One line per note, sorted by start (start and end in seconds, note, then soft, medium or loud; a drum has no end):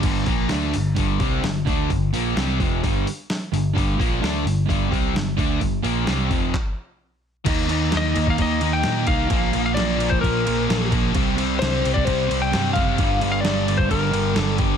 0.03 0.26 G1 medium
0.03 0.28 G2 medium
0.03 0.27 D3 medium
0.03 0.27 G3 loud
0.03 kick loud
0.03 open hi-hat medium
0.03 crash loud
0.26 0.49 A#1 medium
0.26 0.50 A#2 medium
0.26 0.51 F3 loud
0.26 0.51 A#3 medium
0.26 kick loud
0.26 open hi-hat medium
0.49 0.73 D2 medium
0.49 0.74 D3 loud
0.49 0.74 A3 medium
0.49 0.74 D4 loud
0.49 snare loud
0.49 open hi-hat medium
0.74 0.96 G1 medium
0.74 0.93 G2 medium
0.74 0.94 D3 medium
0.74 open hi-hat medium
0.96 1.19 G1 medium
0.96 1.20 G2 medium
0.96 1.21 D3 loud
0.96 1.20 G3 medium
0.96 kick loud
0.96 open hi-hat medium
1.20 1.42 C2 medium
1.20 1.44 C3 medium
1.20 1.44 G3 loud
1.20 1.44 C4 loud
1.20 kick loud
1.20 open hi-hat medium
1.43 1.65 G1 medium
1.43 1.63 G2 medium
1.43 1.63 D3 medium
1.43 snare loud
1.43 open hi-hat medium
1.67 1.89 D2 loud
1.67 1.90 D3 medium
1.67 1.90 A3 medium
1.67 1.91 D4 loud
1.67 kick loud
1.67 open hi-hat medium
1.90 2.12 G1 medium
1.90 2.10 G2 medium
1.90 2.10 D3 medium
1.90 kick medium
1.90 open hi-hat medium
2.13 2.35 A#1 medium
2.13 2.36 A#2 medium
2.13 2.36 F3 loud
2.13 2.37 A#3 medium
2.13 open hi-hat medium
2.36 2.58 C2 medium
2.36 2.59 C3 loud
2.36 2.60 G3 medium
2.36 2.60 C4 loud
2.36 snare loud
2.36 open hi-hat medium
2.60 2.82 F1 medium
2.60 2.82 F2 loud
2.60 2.82 C3 medium
2.60 2.83 F3 loud
2.60 kick loud
2.60 open hi-hat medium
2.83 3.05 G1 medium
2.83 3.06 G2 medium
2.83 3.06 D3 loud
2.83 3.06 G3 loud
2.83 kick loud
2.83 open hi-hat medium
3.07 open hi-hat medium
3.30 snare loud
3.30 open hi-hat medium
3.53 3.74 G1 medium
3.53 3.72 G2 medium
3.53 3.72 D3 medium
3.53 open hi-hat medium
3.75 3.98 G1 medium
3.75 3.98 G2 medium
3.75 3.98 D3 medium
3.75 3.98 G3 loud
3.75 kick loud
3.75 open hi-hat medium
3.98 4.21 A#1 medium
3.98 4.21 A#2 medium
3.98 4.21 F3 medium
3.98 4.22 A#3 loud
3.98 kick loud
3.98 open hi-hat medium
4.22 4.44 D2 medium
4.22 4.44 D3 loud
4.22 4.45 A3 medium
4.22 4.45 D4 loud
4.22 snare loud
4.22 open hi-hat medium
4.45 4.67 G1 medium
4.45 4.64 G2 medium
4.45 4.64 D3 medium
4.45 open hi-hat medium
4.69 4.91 G1 loud
4.69 4.91 G2 medium
4.69 4.90 D3 medium
4.69 4.89 G3 loud
4.69 kick loud
4.69 open hi-hat medium
4.91 5.14 C2 medium
4.91 5.14 C3 medium
4.91 5.14 G3 medium
4.91 5.14 C4 loud
4.91 kick loud
4.91 open hi-hat medium
5.15 5.37 G1 medium
5.15 5.34 G2 medium
5.15 5.34 D3 medium
5.15 snare loud
5.15 open hi-hat medium
5.37 5.60 D2 medium
5.37 5.60 D3 medium
5.37 5.61 A3 medium
5.37 5.61 D4 loud
5.37 kick loud
5.37 open hi-hat medium
5.61 5.83 G1 medium
5.61 5.80 G2 medium
5.61 5.80 D3 medium
5.61 kick medium
5.61 open hi-hat medium
5.83 6.06 A#1 medium
5.83 6.06 A#2 medium
5.83 6.06 F3 medium
5.83 6.07 A#3 loud
5.83 open hi-hat medium
6.07 6.29 C2 medium
6.07 6.30 C3 loud
6.07 6.30 G3 loud
6.07 6.30 C4 loud
6.07 snare loud
6.07 open hi-hat medium
6.30 6.52 F1 medium
6.30 6.53 F2 loud
6.30 6.53 C3 loud
6.30 6.53 F3 loud
6.30 kick loud
6.30 open hi-hat medium
6.54 kick medium
6.54 clap medium
7.45 7.90 D#2 loud
7.45 7.68 D#3 loud
7.45 7.70 A#3 loud
7.45 7.70 D#4 loud
7.45 kick loud
7.45 crash loud
7.45 crash medium
7.69 7.92 D#3 medium
7.69 7.93 A#3 medium
7.69 7.93 D#4 medium
7.69 crash medium
7.92 8.15 D#2 medium
7.92 8.14 D#3 loud
7.92 8.15 A#3 loud
7.92 8.15 D#4 loud
7.92 snare loud
7.92 crash medium
7.97 8.30 D#5 loud
8.15 8.38 D#2 medium
8.15 8.36 D#3 loud
8.15 8.37 A#3 loud
8.15 8.37 D#4 loud
8.15 crash medium
8.27 8.41 F5 loud
8.27 kick medium
8.37 8.61 D#2 loud
8.37 8.59 D#3 loud
8.37 8.60 A#3 loud
8.37 8.61 D#4 loud
8.37 kick medium
8.37 crash medium
8.42 8.76 D#5 loud
8.60 8.83 D#2 medium
8.60 8.84 D#3 medium
8.60 8.84 A#3 loud
8.60 8.85 D#4 loud
8.60 crash medium
8.73 9.05 G5 loud
8.83 9.07 A#2 medium
8.83 9.07 D#3 loud
8.83 9.08 A#3 loud
8.83 9.08 D#4 loud
8.83 snare loud
8.83 crash medium
9.07 9.30 C2 loud
9.07 9.30 D#3 medium
9.07 9.30 A#3 medium
9.07 9.30 D#4 medium
9.07 9.61 F5 medium
9.07 kick medium
9.07 crash medium
9.28 9.53 A#1 loud
9.28 9.54 A#2 medium
9.28 9.52 F3 loud
9.28 kick loud
9.28 crash medium
9.32 9.54 F3 loud
9.32 9.54 A#3 medium
9.53 9.76 A#1 medium
9.53 9.77 A#2 loud
9.53 9.77 F3 loud
9.53 9.78 A#3 loud
9.53 crash medium
9.66 9.74 F5 loud
9.74 10.21 A#1 medium
9.74 10.01 A#2 loud
9.74 10.01 F3 loud
9.74 10.11 D5 loud
9.74 snare loud
9.74 crash medium
9.79 10.02 A#3 loud
9.97 10.20 A#2 medium
9.97 10.21 F3 medium
9.97 10.21 A#3 medium
9.97 crash medium
10.02 10.23 A#2 loud
10.02 10.23 F3 loud
10.02 10.23 A#3 medium
10.10 10.21 C5 medium
10.10 kick medium
10.21 10.45 A#1 loud
10.21 10.44 A#2 medium
10.21 10.45 F3 loud
10.21 10.45 A#3 loud
10.21 10.87 A#4 medium
10.21 kick loud
10.21 crash medium
10.45 10.68 A#1 medium
10.45 10.67 A#2 medium
10.45 10.68 F3 medium
10.45 10.69 A#3 loud
10.45 crash medium
10.68 10.91 A#1 medium
10.68 10.90 A#2 loud
10.68 10.91 F3 loud
10.68 10.91 A#3 loud
10.68 snare loud
10.68 crash medium
10.92 11.14 A#1 loud
10.92 11.14 A#2 medium
10.92 11.14 F3 medium
10.92 11.14 A#3 medium
10.92 kick medium
10.92 crash medium
11.15 11.59 C2 loud
11.15 11.37 C3 medium
11.15 11.39 G3 loud
11.15 11.38 C4 loud
11.15 kick loud
11.15 crash medium
11.38 11.59 C3 medium
11.38 11.61 G3 loud
11.38 11.61 C4 loud
11.38 crash medium
11.59 11.84 C2 loud
11.59 11.83 C3 medium
11.59 11.86 G3 loud
11.59 11.85 C4 loud
11.59 11.94 C5 medium
11.59 snare loud
11.59 crash medium
11.82 12.07 C2 medium
11.82 12.07 C3 medium
11.82 12.04 G3 medium
11.82 crash medium
11.86 12.08 G3 loud
11.86 12.08 C4 loud
11.94 12.05 D5 medium
11.94 kick medium
12.04 12.29 C2 loud
12.04 12.27 C3 loud
12.04 12.29 G3 loud
12.04 12.41 C5 medium
12.04 kick loud
12.04 crash medium
12.08 12.27 C3 loud
12.08 12.28 G3 loud
12.08 12.29 C4 loud
12.28 12.52 C2 medium
12.28 12.52 C3 medium
12.28 12.53 G3 loud
12.28 12.53 C4 loud
12.28 crash medium
12.42 12.73 G5 loud
12.53 12.75 G2 medium
12.53 12.75 C3 medium
12.53 12.75 G3 loud
12.53 12.75 C4 loud
12.53 snare loud
12.53 crash medium
12.73 12.99 F#1 medium
12.73 12.98 C3 medium
12.73 12.98 G3 medium
12.73 12.98 C4 medium
12.73 13.30 F5 loud
12.73 kick medium
12.73 crash medium
12.98 13.21 G1 loud
12.98 13.20 G2 loud
12.98 13.20 D3 loud
12.98 13.21 G3 loud
12.98 kick loud
12.98 crash medium
13.21 13.45 G1 medium
13.21 13.42 G2 medium
13.21 13.43 D3 medium
13.21 13.44 G3 loud
13.21 crash medium
13.32 13.40 F5 loud
13.40 13.66 G2 medium
13.40 13.78 D5 loud
13.45 13.88 G1 loud
13.45 13.66 D3 loud
13.45 13.67 G3 loud
13.45 snare loud
13.45 crash medium
13.67 13.89 G2 loud
13.67 13.89 D3 loud
13.67 13.89 G3 loud
13.67 crash medium
13.78 13.90 C5 medium
13.78 kick medium
13.90 14.12 G1 medium
13.90 14.11 G2 loud
13.90 14.11 D3 loud
13.90 14.12 G3 loud
13.90 14.36 A#4 medium
13.90 kick medium
13.90 crash medium
14.12 14.35 G1 medium
14.12 14.35 G2 medium
14.12 14.35 D3 medium
14.12 14.36 G3 loud
14.12 crash medium
14.36 14.59 G1 medium
14.36 14.58 G2 medium
14.36 14.58 D3 loud
14.36 14.58 G3 loud
14.36 14.56 A4 medium
14.36 snare loud
14.36 crash medium
14.58 14.77 G1 medium
14.58 14.77 G2 medium
14.58 14.77 D3 medium
14.58 14.77 G3 medium
14.58 kick loud
14.58 crash medium